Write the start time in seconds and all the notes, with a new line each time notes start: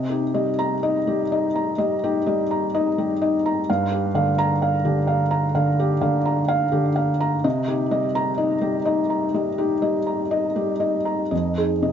Already playing: C3 D#5
0.10 D#4 G4
0.34 G3 D#5
0.59 A#5
0.83 D#4 D#5
1.07 G3 G4
1.32 D#4 D#5
1.55 A#5
1.78 G3 D#5
2.04 D#4 G4
2.26 G3 D#5
2.51 A#5
2.74 D#4 D#5
2.98 G3 G4
3.22 D#4 D#5
3.46 A#5
3.69 G2 F5
3.92 G4
4.14 D3 F5
4.38 A#5
4.62 F5
4.85 D3 G4
5.07 F5
5.31 A#5
5.55 D3 F5
5.80 G4
6.01 D3 F5
6.26 A#5
6.48 F5
6.72 D3 G4
6.96 F5
7.21 A#5
7.44 C3 D#5
7.68 D#4 G4
7.91 G3 D#5
8.15 A#5
8.38 D#4 D#5
8.61 G3 G4
8.85 D#4 D#5
9.10 A#5
9.34 G3 D#5
9.58 D#4 G4
9.82 G3 D#5
10.07 A#5
10.31 D#4 D#5
10.56 G3 G4
10.80 D#4 D#5
11.05 A#5
11.31 F2 D#5
11.57 D#4 G#4
11.82 C3 D#5